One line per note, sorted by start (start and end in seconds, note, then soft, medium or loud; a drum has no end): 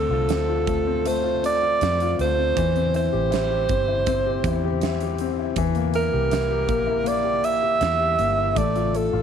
0.00 2.53 D3 medium
0.00 0.66 A3 medium
0.00 0.29 C4 medium
0.00 1.08 A4 loud
0.09 0.27 C2 medium
0.09 0.48 F4 medium
0.29 1.77 D2 medium
0.29 0.86 C4 medium
0.29 snare loud
0.29 closed hi-hat medium
0.49 1.22 F4 medium
0.67 1.05 A3 medium
0.67 kick medium
0.67 closed hi-hat medium
0.87 1.42 C4 medium
1.06 2.19 A3 medium
1.06 1.44 C5 loud
1.06 closed hi-hat loud
1.23 1.61 F4 medium
1.43 1.81 C4 medium
1.43 2.16 D5 loud
1.43 closed hi-hat medium
1.62 2.00 F4 medium
1.81 2.17 F2 medium
1.81 2.37 C4 medium
1.81 snare loud
1.81 closed hi-hat medium
2.00 2.56 F4 medium
2.00 closed hi-hat medium
2.19 2.54 D2 loud
2.19 2.56 A3 medium
2.19 2.91 C5 loud
2.19 closed hi-hat medium
2.39 2.57 C4 medium
2.56 3.09 E2 loud
2.56 5.53 E3 medium
2.56 kick loud
2.56 closed hi-hat medium
2.76 3.69 C4 medium
2.76 closed hi-hat soft
2.94 3.30 E4 medium
2.94 5.17 C5 loud
2.94 closed hi-hat medium
3.12 3.66 A1 loud
3.12 3.49 G4 medium
3.31 3.87 E4 medium
3.31 snare loud
3.31 closed hi-hat medium
3.51 4.25 G4 medium
3.69 4.41 G1 medium
3.69 4.06 C4 medium
3.69 kick loud
3.69 closed hi-hat medium
3.88 4.46 E4 medium
4.07 5.20 C4 medium
4.07 kick medium
4.07 closed hi-hat loud
4.26 4.63 G4 medium
4.44 5.53 E2 loud
4.44 4.83 E4 medium
4.44 kick loud
4.44 closed hi-hat loud
4.65 5.01 G4 medium
4.81 5.38 E4 medium
4.81 snare loud
4.81 closed hi-hat medium
5.00 5.56 G4 medium
5.00 closed hi-hat medium
5.18 5.57 C4 medium
5.18 closed hi-hat medium
5.39 5.57 E4 medium
5.56 6.09 E2 loud
5.56 8.53 E3 medium
5.56 kick loud
5.56 closed hi-hat loud
5.75 6.67 A#3 medium
5.75 closed hi-hat soft
5.94 6.31 E4 medium
5.94 7.09 A#4 loud
5.94 closed hi-hat medium
6.13 6.69 C2 loud
6.13 6.49 G4 medium
6.31 6.85 E4 medium
6.31 snare loud
6.31 closed hi-hat medium
6.50 7.23 G4 medium
6.68 7.77 A#1 medium
6.68 7.02 A#3 medium
6.68 kick medium
6.68 closed hi-hat medium
6.87 7.42 E4 medium
7.04 8.17 A#3 medium
7.04 7.46 D5 loud
7.04 closed hi-hat loud
7.24 7.61 G4 medium
7.43 7.79 E4 medium
7.43 8.59 E5 loud
7.43 closed hi-hat medium
7.63 7.98 G4 medium
7.81 8.16 E2 loud
7.81 8.36 E4 medium
7.81 snare loud
7.81 closed hi-hat medium
8.00 8.55 G4 soft
8.19 8.54 G1 loud
8.19 8.55 A#3 medium
8.19 closed hi-hat medium
8.38 8.56 E4 medium
8.55 9.09 A1 loud
8.55 8.92 A3 medium
8.55 8.98 D5 loud
8.55 kick loud
8.55 closed hi-hat loud
8.76 9.12 F4 medium
8.76 closed hi-hat soft
8.94 9.22 A3 medium
8.94 9.22 A4 medium
8.94 closed hi-hat medium
9.13 9.22 A1 medium
9.13 9.22 F4 medium